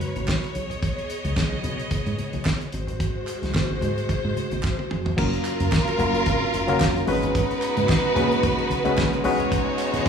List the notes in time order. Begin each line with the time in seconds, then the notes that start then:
Already playing: G#3 F#4 A#4 B4 C#5
0.00 closed hi-hat, high conga
0.16 G#1, closed hi-hat, high conga
0.28 kick, snare, clap
0.43 closed hi-hat, muted conga
0.54 B1 B3 G#4 D#5, closed hi-hat
0.70 closed hi-hat, low conga
0.82 kick, closed hi-hat, muted conga, low conga
0.98 closed hi-hat
1.10 closed hi-hat
1.24 C#2, closed hi-hat, high conga
1.37 kick, snare, clap
1.52 B1
1.63 B2, closed hi-hat, high conga, low conga
1.79 closed hi-hat
1.91 kick, closed hi-hat, muted conga, high conga
2.06 G#2, closed hi-hat, muted conga
2.18 closed hi-hat, high conga
2.33 B1, closed hi-hat, high conga
2.45 kick, snare, clap, muted conga
2.61 closed hi-hat, muted conga
2.72 G#1 G#3 F#4 C5, closed hi-hat
2.87 closed hi-hat, low conga
3.00 kick, closed hi-hat, muted conga, low conga
3.15 muted conga
3.27 clap, closed hi-hat
3.42 C2, snare, closed hi-hat, high conga
3.54 kick, snare, clap
3.70 G#1
3.81 G#2, closed hi-hat, high conga, low conga
3.98 closed hi-hat
4.09 kick, closed hi-hat, muted conga, high conga
4.25 G#2
4.36 closed hi-hat, high conga
4.51 G#1, closed hi-hat, high conga
4.63 kick, snare, clap
4.79 high tom
4.91 F1, mid tom
5.05 floor tom, low conga
5.17 F#1 F#3 A#3 C#4 F4 A#4, kick, crash, muted conga
5.33 closed hi-hat, muted conga
5.45 clap, closed hi-hat
5.60 F#2, closed hi-hat, high conga
5.72 kick, snare, clap
5.87 closed hi-hat
5.98 F#1 F#3 A#3 C#4 F4 A#4, closed hi-hat, high conga, low conga
6.15 closed hi-hat
6.26 G#1, kick, closed hi-hat, high conga
6.42 muted conga
6.54 F#1, closed hi-hat, high conga
6.67 F#3 A#3 C#4 F4 A#4, closed hi-hat, high conga
6.80 F1, kick, snare, clap
6.96 closed hi-hat
7.07 G#1 G#3 B3 C#4 D#4 F#4 B4, open hi-hat
7.23 closed hi-hat, low conga
7.35 kick, closed hi-hat, muted conga
7.50 closed hi-hat, muted conga
7.62 clap, closed hi-hat
7.77 G#2, closed hi-hat, high conga
7.89 kick, snare, clap
8.04 muted conga
8.15 A#2 G#3 B3 C#4 F#4 B4, closed hi-hat, high conga, low conga
8.32 closed hi-hat
8.43 A#1, kick, closed hi-hat, muted conga, high conga
8.59 closed hi-hat
8.70 B1, closed hi-hat, high conga
8.85 G#3 B3 C#4 F#4 B4, closed hi-hat, high conga
8.97 A#1, kick, snare, clap
9.12 closed hi-hat, muted conga
9.23 B1 G#3 B3 C#4 D4 D#4 F#4 B4 C#5, open hi-hat
9.31 D#4
9.39 closed hi-hat, low conga
9.52 kick, closed hi-hat, muted conga
9.67 muted conga
9.79 clap, closed hi-hat
9.93 B2, snare, closed hi-hat, high conga